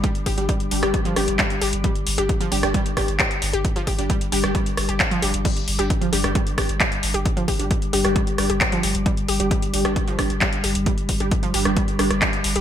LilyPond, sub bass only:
\new Staff \with { instrumentName = "Sub bass" } { \clef bass \time 4/4 \key c \minor \tempo 4 = 133 r8 g,,16 g,,16 r8 g,,16 g,,16 r8 g,,16 g,,16 r8 g,,16 g,,16 | r8 g,,16 g,,16 r8 g,,16 g,,16 r8 g,,16 g,,16 r8 g,,16 g,,16 | r8 g,,16 g,,16 r8 g,,16 g,,16 r8 g,,16 g,,16 r8 g,,16 g,,16 | r8 g,,16 g,,16 r8 g,,16 g,,16 r8 g,,16 g,,16 r8 g,,16 g,,16 |
r8 g,,16 g,,16 r8 g,,16 g,,16 r8 g,,16 g,,16 r8 g,,16 g,,16 | r8 g,,16 g,,16 r8 g,,16 g,,16 r8 g,,16 g,,16 r8 g,,16 g,,16 | r8 g,,16 g,,16 r8 g,,16 g,,16 r8 g,,16 g,,16 r8 g,,16 g,,16 | }